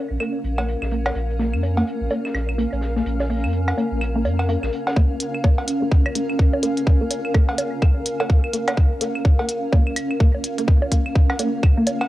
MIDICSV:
0, 0, Header, 1, 5, 480
1, 0, Start_track
1, 0, Key_signature, -5, "minor"
1, 0, Tempo, 476190
1, 1163, Time_signature, 4, 2, 24, 8
1, 12178, End_track
2, 0, Start_track
2, 0, Title_t, "Ambient pad"
2, 0, Program_c, 0, 92
2, 0, Note_on_c, 0, 61, 89
2, 0, Note_on_c, 0, 70, 87
2, 0, Note_on_c, 0, 77, 82
2, 12178, Note_off_c, 0, 61, 0
2, 12178, Note_off_c, 0, 70, 0
2, 12178, Note_off_c, 0, 77, 0
2, 12178, End_track
3, 0, Start_track
3, 0, Title_t, "Synth pluck"
3, 0, Program_c, 1, 84
3, 204, Note_on_c, 1, 58, 73
3, 290, Note_off_c, 1, 58, 0
3, 588, Note_on_c, 1, 58, 73
3, 645, Note_off_c, 1, 58, 0
3, 924, Note_on_c, 1, 58, 72
3, 981, Note_off_c, 1, 58, 0
3, 1404, Note_on_c, 1, 58, 74
3, 1490, Note_off_c, 1, 58, 0
3, 1787, Note_on_c, 1, 58, 71
3, 1845, Note_off_c, 1, 58, 0
3, 2124, Note_on_c, 1, 58, 77
3, 2181, Note_off_c, 1, 58, 0
3, 2603, Note_on_c, 1, 58, 77
3, 2690, Note_off_c, 1, 58, 0
3, 2987, Note_on_c, 1, 58, 75
3, 3045, Note_off_c, 1, 58, 0
3, 3324, Note_on_c, 1, 58, 76
3, 3381, Note_off_c, 1, 58, 0
3, 3804, Note_on_c, 1, 58, 71
3, 3890, Note_off_c, 1, 58, 0
3, 4187, Note_on_c, 1, 58, 77
3, 4245, Note_off_c, 1, 58, 0
3, 4523, Note_on_c, 1, 58, 80
3, 4580, Note_off_c, 1, 58, 0
3, 5002, Note_on_c, 1, 58, 80
3, 5060, Note_off_c, 1, 58, 0
3, 5483, Note_on_c, 1, 58, 79
3, 5569, Note_off_c, 1, 58, 0
3, 5866, Note_on_c, 1, 58, 72
3, 5924, Note_off_c, 1, 58, 0
3, 6202, Note_on_c, 1, 58, 74
3, 6260, Note_off_c, 1, 58, 0
3, 6682, Note_on_c, 1, 58, 73
3, 6769, Note_off_c, 1, 58, 0
3, 7065, Note_on_c, 1, 58, 74
3, 7124, Note_off_c, 1, 58, 0
3, 7402, Note_on_c, 1, 58, 81
3, 7460, Note_off_c, 1, 58, 0
3, 7883, Note_on_c, 1, 58, 79
3, 7969, Note_off_c, 1, 58, 0
3, 8267, Note_on_c, 1, 58, 77
3, 8325, Note_off_c, 1, 58, 0
3, 8602, Note_on_c, 1, 58, 73
3, 8660, Note_off_c, 1, 58, 0
3, 9083, Note_on_c, 1, 58, 75
3, 9169, Note_off_c, 1, 58, 0
3, 9467, Note_on_c, 1, 58, 75
3, 9525, Note_off_c, 1, 58, 0
3, 9803, Note_on_c, 1, 58, 80
3, 9860, Note_off_c, 1, 58, 0
3, 10283, Note_on_c, 1, 58, 81
3, 10369, Note_off_c, 1, 58, 0
3, 10667, Note_on_c, 1, 58, 78
3, 10725, Note_off_c, 1, 58, 0
3, 11004, Note_on_c, 1, 58, 73
3, 11061, Note_off_c, 1, 58, 0
3, 11484, Note_on_c, 1, 58, 77
3, 11570, Note_off_c, 1, 58, 0
3, 11867, Note_on_c, 1, 58, 77
3, 11925, Note_off_c, 1, 58, 0
3, 12178, End_track
4, 0, Start_track
4, 0, Title_t, "Analog synth bass"
4, 0, Program_c, 2, 38
4, 107, Note_on_c, 2, 34, 87
4, 176, Note_off_c, 2, 34, 0
4, 444, Note_on_c, 2, 34, 88
4, 762, Note_off_c, 2, 34, 0
4, 827, Note_on_c, 2, 34, 74
4, 1119, Note_off_c, 2, 34, 0
4, 1163, Note_on_c, 2, 34, 97
4, 1547, Note_on_c, 2, 41, 92
4, 1563, Note_off_c, 2, 34, 0
4, 1840, Note_off_c, 2, 41, 0
4, 2027, Note_on_c, 2, 34, 92
4, 2096, Note_off_c, 2, 34, 0
4, 2363, Note_on_c, 2, 34, 86
4, 2682, Note_off_c, 2, 34, 0
4, 2748, Note_on_c, 2, 34, 73
4, 3040, Note_off_c, 2, 34, 0
4, 3084, Note_on_c, 2, 34, 95
4, 3468, Note_on_c, 2, 41, 89
4, 3483, Note_off_c, 2, 34, 0
4, 3760, Note_off_c, 2, 41, 0
4, 3947, Note_on_c, 2, 34, 90
4, 4284, Note_on_c, 2, 41, 100
4, 4299, Note_off_c, 2, 34, 0
4, 4602, Note_off_c, 2, 41, 0
4, 4667, Note_on_c, 2, 34, 90
4, 4736, Note_off_c, 2, 34, 0
4, 12178, End_track
5, 0, Start_track
5, 0, Title_t, "Drums"
5, 202, Note_on_c, 9, 42, 76
5, 204, Note_on_c, 9, 75, 69
5, 303, Note_off_c, 9, 42, 0
5, 305, Note_off_c, 9, 75, 0
5, 447, Note_on_c, 9, 42, 64
5, 548, Note_off_c, 9, 42, 0
5, 587, Note_on_c, 9, 56, 76
5, 587, Note_on_c, 9, 60, 37
5, 587, Note_on_c, 9, 75, 48
5, 688, Note_off_c, 9, 56, 0
5, 688, Note_off_c, 9, 60, 0
5, 688, Note_off_c, 9, 75, 0
5, 691, Note_on_c, 9, 42, 76
5, 791, Note_off_c, 9, 42, 0
5, 827, Note_on_c, 9, 75, 55
5, 828, Note_on_c, 9, 38, 42
5, 921, Note_on_c, 9, 42, 61
5, 928, Note_off_c, 9, 75, 0
5, 929, Note_off_c, 9, 38, 0
5, 1021, Note_off_c, 9, 42, 0
5, 1067, Note_on_c, 9, 56, 87
5, 1067, Note_on_c, 9, 60, 69
5, 1067, Note_on_c, 9, 76, 55
5, 1068, Note_on_c, 9, 38, 46
5, 1162, Note_on_c, 9, 42, 80
5, 1168, Note_off_c, 9, 56, 0
5, 1168, Note_off_c, 9, 60, 0
5, 1168, Note_off_c, 9, 76, 0
5, 1169, Note_off_c, 9, 38, 0
5, 1262, Note_off_c, 9, 42, 0
5, 1311, Note_on_c, 9, 42, 40
5, 1404, Note_off_c, 9, 42, 0
5, 1404, Note_on_c, 9, 42, 60
5, 1407, Note_on_c, 9, 38, 44
5, 1505, Note_off_c, 9, 42, 0
5, 1507, Note_off_c, 9, 38, 0
5, 1548, Note_on_c, 9, 75, 49
5, 1644, Note_on_c, 9, 60, 35
5, 1647, Note_on_c, 9, 42, 70
5, 1649, Note_off_c, 9, 75, 0
5, 1745, Note_off_c, 9, 60, 0
5, 1748, Note_off_c, 9, 42, 0
5, 1787, Note_on_c, 9, 56, 74
5, 1887, Note_on_c, 9, 42, 64
5, 1888, Note_off_c, 9, 56, 0
5, 1988, Note_off_c, 9, 42, 0
5, 2121, Note_on_c, 9, 42, 71
5, 2124, Note_on_c, 9, 60, 71
5, 2221, Note_off_c, 9, 42, 0
5, 2224, Note_off_c, 9, 60, 0
5, 2269, Note_on_c, 9, 75, 51
5, 2270, Note_on_c, 9, 38, 41
5, 2361, Note_on_c, 9, 42, 67
5, 2362, Note_off_c, 9, 38, 0
5, 2362, Note_on_c, 9, 38, 52
5, 2365, Note_on_c, 9, 76, 55
5, 2370, Note_off_c, 9, 75, 0
5, 2462, Note_off_c, 9, 42, 0
5, 2463, Note_off_c, 9, 38, 0
5, 2466, Note_off_c, 9, 76, 0
5, 2509, Note_on_c, 9, 75, 50
5, 2608, Note_on_c, 9, 42, 86
5, 2609, Note_off_c, 9, 75, 0
5, 2709, Note_off_c, 9, 42, 0
5, 2748, Note_on_c, 9, 42, 35
5, 2749, Note_on_c, 9, 60, 36
5, 2835, Note_on_c, 9, 38, 45
5, 2845, Note_off_c, 9, 42, 0
5, 2845, Note_on_c, 9, 42, 57
5, 2850, Note_off_c, 9, 60, 0
5, 2936, Note_off_c, 9, 38, 0
5, 2946, Note_off_c, 9, 42, 0
5, 2989, Note_on_c, 9, 38, 45
5, 3086, Note_on_c, 9, 42, 86
5, 3090, Note_off_c, 9, 38, 0
5, 3187, Note_off_c, 9, 42, 0
5, 3222, Note_on_c, 9, 38, 53
5, 3229, Note_on_c, 9, 60, 67
5, 3323, Note_off_c, 9, 38, 0
5, 3327, Note_on_c, 9, 46, 72
5, 3330, Note_off_c, 9, 60, 0
5, 3428, Note_off_c, 9, 46, 0
5, 3468, Note_on_c, 9, 75, 52
5, 3558, Note_on_c, 9, 42, 72
5, 3569, Note_off_c, 9, 75, 0
5, 3659, Note_off_c, 9, 42, 0
5, 3708, Note_on_c, 9, 56, 71
5, 3708, Note_on_c, 9, 76, 56
5, 3805, Note_on_c, 9, 60, 35
5, 3809, Note_off_c, 9, 56, 0
5, 3809, Note_off_c, 9, 76, 0
5, 3810, Note_on_c, 9, 42, 57
5, 3906, Note_off_c, 9, 60, 0
5, 3911, Note_off_c, 9, 42, 0
5, 4044, Note_on_c, 9, 42, 73
5, 4045, Note_on_c, 9, 75, 70
5, 4144, Note_off_c, 9, 42, 0
5, 4146, Note_off_c, 9, 75, 0
5, 4284, Note_on_c, 9, 42, 63
5, 4284, Note_on_c, 9, 60, 66
5, 4385, Note_off_c, 9, 42, 0
5, 4385, Note_off_c, 9, 60, 0
5, 4427, Note_on_c, 9, 56, 73
5, 4427, Note_on_c, 9, 75, 48
5, 4525, Note_on_c, 9, 42, 81
5, 4528, Note_off_c, 9, 56, 0
5, 4528, Note_off_c, 9, 75, 0
5, 4626, Note_off_c, 9, 42, 0
5, 4666, Note_on_c, 9, 38, 44
5, 4668, Note_on_c, 9, 75, 54
5, 4764, Note_on_c, 9, 42, 66
5, 4767, Note_off_c, 9, 38, 0
5, 4769, Note_off_c, 9, 75, 0
5, 4865, Note_off_c, 9, 42, 0
5, 4908, Note_on_c, 9, 56, 79
5, 4908, Note_on_c, 9, 60, 35
5, 4916, Note_on_c, 9, 38, 41
5, 5003, Note_on_c, 9, 36, 109
5, 5004, Note_off_c, 9, 60, 0
5, 5004, Note_on_c, 9, 60, 38
5, 5009, Note_off_c, 9, 56, 0
5, 5016, Note_off_c, 9, 38, 0
5, 5104, Note_off_c, 9, 36, 0
5, 5105, Note_off_c, 9, 60, 0
5, 5243, Note_on_c, 9, 42, 87
5, 5343, Note_off_c, 9, 42, 0
5, 5387, Note_on_c, 9, 75, 49
5, 5483, Note_on_c, 9, 36, 111
5, 5483, Note_on_c, 9, 60, 76
5, 5488, Note_off_c, 9, 75, 0
5, 5584, Note_off_c, 9, 36, 0
5, 5584, Note_off_c, 9, 60, 0
5, 5627, Note_on_c, 9, 56, 73
5, 5723, Note_on_c, 9, 42, 85
5, 5728, Note_off_c, 9, 56, 0
5, 5824, Note_off_c, 9, 42, 0
5, 5963, Note_on_c, 9, 36, 110
5, 6063, Note_off_c, 9, 36, 0
5, 6107, Note_on_c, 9, 60, 39
5, 6107, Note_on_c, 9, 75, 49
5, 6107, Note_on_c, 9, 76, 61
5, 6203, Note_on_c, 9, 42, 82
5, 6207, Note_off_c, 9, 60, 0
5, 6207, Note_off_c, 9, 75, 0
5, 6207, Note_off_c, 9, 76, 0
5, 6304, Note_off_c, 9, 42, 0
5, 6346, Note_on_c, 9, 75, 49
5, 6443, Note_on_c, 9, 36, 103
5, 6447, Note_off_c, 9, 75, 0
5, 6544, Note_off_c, 9, 36, 0
5, 6586, Note_on_c, 9, 60, 80
5, 6682, Note_on_c, 9, 42, 86
5, 6687, Note_off_c, 9, 60, 0
5, 6783, Note_off_c, 9, 42, 0
5, 6827, Note_on_c, 9, 42, 34
5, 6923, Note_on_c, 9, 36, 115
5, 6928, Note_off_c, 9, 42, 0
5, 7024, Note_off_c, 9, 36, 0
5, 7163, Note_on_c, 9, 42, 94
5, 7164, Note_on_c, 9, 60, 37
5, 7264, Note_off_c, 9, 42, 0
5, 7265, Note_off_c, 9, 60, 0
5, 7306, Note_on_c, 9, 75, 50
5, 7403, Note_on_c, 9, 36, 117
5, 7403, Note_on_c, 9, 76, 61
5, 7407, Note_off_c, 9, 75, 0
5, 7504, Note_off_c, 9, 36, 0
5, 7504, Note_off_c, 9, 76, 0
5, 7547, Note_on_c, 9, 56, 77
5, 7643, Note_on_c, 9, 42, 91
5, 7643, Note_on_c, 9, 60, 75
5, 7647, Note_off_c, 9, 56, 0
5, 7744, Note_off_c, 9, 42, 0
5, 7744, Note_off_c, 9, 60, 0
5, 7883, Note_on_c, 9, 36, 115
5, 7883, Note_on_c, 9, 75, 70
5, 7984, Note_off_c, 9, 36, 0
5, 7984, Note_off_c, 9, 75, 0
5, 8123, Note_on_c, 9, 42, 93
5, 8224, Note_off_c, 9, 42, 0
5, 8267, Note_on_c, 9, 56, 77
5, 8267, Note_on_c, 9, 60, 38
5, 8267, Note_on_c, 9, 75, 51
5, 8363, Note_on_c, 9, 36, 115
5, 8368, Note_off_c, 9, 56, 0
5, 8368, Note_off_c, 9, 60, 0
5, 8368, Note_off_c, 9, 75, 0
5, 8464, Note_off_c, 9, 36, 0
5, 8507, Note_on_c, 9, 75, 57
5, 8603, Note_on_c, 9, 42, 91
5, 8608, Note_off_c, 9, 75, 0
5, 8704, Note_off_c, 9, 42, 0
5, 8747, Note_on_c, 9, 42, 35
5, 8747, Note_on_c, 9, 56, 94
5, 8747, Note_on_c, 9, 60, 73
5, 8747, Note_on_c, 9, 76, 59
5, 8843, Note_on_c, 9, 36, 115
5, 8848, Note_off_c, 9, 42, 0
5, 8848, Note_off_c, 9, 56, 0
5, 8848, Note_off_c, 9, 60, 0
5, 8848, Note_off_c, 9, 76, 0
5, 8944, Note_off_c, 9, 36, 0
5, 9082, Note_on_c, 9, 42, 99
5, 9183, Note_off_c, 9, 42, 0
5, 9227, Note_on_c, 9, 75, 55
5, 9323, Note_on_c, 9, 36, 122
5, 9324, Note_on_c, 9, 60, 36
5, 9328, Note_off_c, 9, 75, 0
5, 9424, Note_off_c, 9, 36, 0
5, 9425, Note_off_c, 9, 60, 0
5, 9468, Note_on_c, 9, 56, 78
5, 9563, Note_on_c, 9, 42, 89
5, 9568, Note_off_c, 9, 56, 0
5, 9664, Note_off_c, 9, 42, 0
5, 9803, Note_on_c, 9, 36, 117
5, 9803, Note_on_c, 9, 60, 73
5, 9904, Note_off_c, 9, 36, 0
5, 9904, Note_off_c, 9, 60, 0
5, 9947, Note_on_c, 9, 75, 55
5, 10043, Note_on_c, 9, 42, 88
5, 10043, Note_on_c, 9, 76, 57
5, 10048, Note_off_c, 9, 75, 0
5, 10143, Note_off_c, 9, 76, 0
5, 10144, Note_off_c, 9, 42, 0
5, 10187, Note_on_c, 9, 75, 52
5, 10283, Note_on_c, 9, 36, 115
5, 10288, Note_off_c, 9, 75, 0
5, 10384, Note_off_c, 9, 36, 0
5, 10427, Note_on_c, 9, 60, 37
5, 10523, Note_on_c, 9, 42, 95
5, 10528, Note_off_c, 9, 60, 0
5, 10624, Note_off_c, 9, 42, 0
5, 10667, Note_on_c, 9, 42, 38
5, 10763, Note_on_c, 9, 36, 118
5, 10768, Note_off_c, 9, 42, 0
5, 10864, Note_off_c, 9, 36, 0
5, 10907, Note_on_c, 9, 60, 72
5, 11003, Note_on_c, 9, 36, 58
5, 11004, Note_on_c, 9, 42, 94
5, 11007, Note_off_c, 9, 60, 0
5, 11104, Note_off_c, 9, 36, 0
5, 11105, Note_off_c, 9, 42, 0
5, 11148, Note_on_c, 9, 75, 53
5, 11244, Note_on_c, 9, 36, 118
5, 11248, Note_off_c, 9, 75, 0
5, 11344, Note_off_c, 9, 36, 0
5, 11387, Note_on_c, 9, 56, 74
5, 11387, Note_on_c, 9, 76, 61
5, 11483, Note_on_c, 9, 42, 92
5, 11485, Note_on_c, 9, 60, 35
5, 11488, Note_off_c, 9, 56, 0
5, 11488, Note_off_c, 9, 76, 0
5, 11584, Note_off_c, 9, 42, 0
5, 11586, Note_off_c, 9, 60, 0
5, 11724, Note_on_c, 9, 36, 119
5, 11724, Note_on_c, 9, 75, 74
5, 11824, Note_off_c, 9, 36, 0
5, 11825, Note_off_c, 9, 75, 0
5, 11963, Note_on_c, 9, 42, 90
5, 11964, Note_on_c, 9, 60, 71
5, 12063, Note_off_c, 9, 42, 0
5, 12065, Note_off_c, 9, 60, 0
5, 12107, Note_on_c, 9, 56, 77
5, 12107, Note_on_c, 9, 75, 54
5, 12178, Note_off_c, 9, 56, 0
5, 12178, Note_off_c, 9, 75, 0
5, 12178, End_track
0, 0, End_of_file